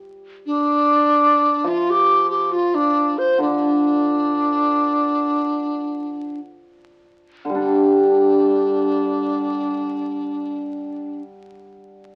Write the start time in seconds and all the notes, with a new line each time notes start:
0.46 D4
1.64 F3 F4
1.90 G4
2.30 G4
2.52 F4
2.75 D4
3.18 C5
3.38 D3 D4
7.45 D3
7.50 G3
7.55 D4